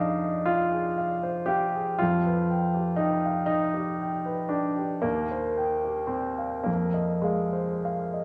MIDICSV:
0, 0, Header, 1, 2, 480
1, 0, Start_track
1, 0, Tempo, 993377
1, 965, Time_signature, 6, 3, 24, 8
1, 1444, Tempo, 1020408
1, 2404, Tempo, 1102941
1, 3364, Tempo, 1197605
1, 3768, End_track
2, 0, Start_track
2, 0, Title_t, "Grand piano"
2, 0, Program_c, 0, 0
2, 0, Control_c, 0, 64, 127
2, 0, Note_on_c, 0, 41, 58
2, 0, Note_on_c, 0, 62, 86
2, 0, Note_on_c, 0, 63, 63
2, 0, Note_on_c, 0, 68, 41
2, 0, Note_on_c, 0, 72, 45
2, 0, Note_on_c, 0, 77, 48
2, 1, Note_off_c, 0, 77, 0
2, 1, Note_on_c, 0, 77, 48
2, 73, Note_off_c, 0, 68, 0
2, 118, Note_on_c, 0, 75, 41
2, 194, Note_off_c, 0, 77, 0
2, 220, Note_on_c, 0, 65, 82
2, 231, Note_on_c, 0, 77, 50
2, 234, Note_off_c, 0, 63, 0
2, 240, Note_off_c, 0, 75, 0
2, 345, Note_on_c, 0, 68, 44
2, 429, Note_off_c, 0, 77, 0
2, 472, Note_on_c, 0, 77, 44
2, 546, Note_off_c, 0, 68, 0
2, 595, Note_off_c, 0, 72, 0
2, 595, Note_on_c, 0, 72, 42
2, 670, Note_off_c, 0, 77, 0
2, 704, Note_on_c, 0, 67, 77
2, 712, Note_off_c, 0, 65, 0
2, 714, Note_on_c, 0, 77, 49
2, 792, Note_off_c, 0, 72, 0
2, 845, Note_on_c, 0, 68, 41
2, 912, Note_off_c, 0, 77, 0
2, 938, Note_off_c, 0, 41, 0
2, 955, Note_off_c, 0, 67, 0
2, 959, Note_on_c, 0, 65, 82
2, 966, Note_off_c, 0, 68, 0
2, 974, Control_c, 0, 64, 0
2, 974, Note_on_c, 0, 41, 59
2, 978, Note_off_c, 0, 62, 0
2, 1052, Control_c, 0, 64, 127
2, 1090, Note_on_c, 0, 71, 44
2, 1208, Note_on_c, 0, 79, 47
2, 1280, Note_off_c, 0, 71, 0
2, 1326, Note_on_c, 0, 67, 40
2, 1398, Note_off_c, 0, 79, 0
2, 1431, Note_on_c, 0, 63, 72
2, 1442, Note_off_c, 0, 65, 0
2, 1446, Note_on_c, 0, 79, 48
2, 1516, Note_off_c, 0, 67, 0
2, 1570, Note_on_c, 0, 77, 40
2, 1634, Note_off_c, 0, 79, 0
2, 1659, Note_off_c, 0, 63, 0
2, 1666, Note_on_c, 0, 63, 79
2, 1681, Note_on_c, 0, 79, 44
2, 1685, Note_off_c, 0, 77, 0
2, 1799, Note_on_c, 0, 67, 44
2, 1871, Note_off_c, 0, 79, 0
2, 1927, Note_on_c, 0, 79, 42
2, 1990, Note_off_c, 0, 67, 0
2, 2041, Note_on_c, 0, 71, 41
2, 2114, Note_off_c, 0, 79, 0
2, 2149, Note_on_c, 0, 62, 64
2, 2151, Note_off_c, 0, 63, 0
2, 2160, Note_on_c, 0, 79, 45
2, 2233, Note_off_c, 0, 71, 0
2, 2279, Note_on_c, 0, 67, 44
2, 2356, Note_off_c, 0, 79, 0
2, 2391, Note_off_c, 0, 41, 0
2, 2398, Note_on_c, 0, 58, 79
2, 2401, Note_off_c, 0, 62, 0
2, 2404, Note_off_c, 0, 67, 0
2, 2405, Note_on_c, 0, 39, 56
2, 2412, Control_c, 0, 64, 0
2, 2493, Control_c, 0, 64, 127
2, 2527, Note_on_c, 0, 72, 41
2, 2642, Note_on_c, 0, 79, 44
2, 2713, Note_off_c, 0, 72, 0
2, 2759, Note_on_c, 0, 67, 37
2, 2830, Note_off_c, 0, 79, 0
2, 2857, Note_on_c, 0, 60, 56
2, 2873, Note_on_c, 0, 79, 41
2, 2874, Note_off_c, 0, 58, 0
2, 2950, Note_off_c, 0, 67, 0
2, 2994, Note_on_c, 0, 77, 37
2, 3067, Note_off_c, 0, 79, 0
2, 3100, Note_off_c, 0, 39, 0
2, 3103, Note_on_c, 0, 58, 63
2, 3108, Note_off_c, 0, 60, 0
2, 3114, Note_on_c, 0, 41, 52
2, 3116, Note_off_c, 0, 77, 0
2, 3128, Control_c, 0, 64, 0
2, 3209, Control_c, 0, 64, 127
2, 3235, Note_on_c, 0, 75, 40
2, 3356, Note_on_c, 0, 56, 61
2, 3357, Note_off_c, 0, 58, 0
2, 3366, Note_on_c, 0, 77, 39
2, 3432, Note_off_c, 0, 75, 0
2, 3481, Note_on_c, 0, 72, 37
2, 3553, Note_off_c, 0, 77, 0
2, 3610, Note_on_c, 0, 77, 41
2, 3673, Note_off_c, 0, 72, 0
2, 3726, Note_on_c, 0, 75, 35
2, 3768, Note_off_c, 0, 41, 0
2, 3768, Note_off_c, 0, 56, 0
2, 3768, Note_off_c, 0, 75, 0
2, 3768, Note_off_c, 0, 77, 0
2, 3768, End_track
0, 0, End_of_file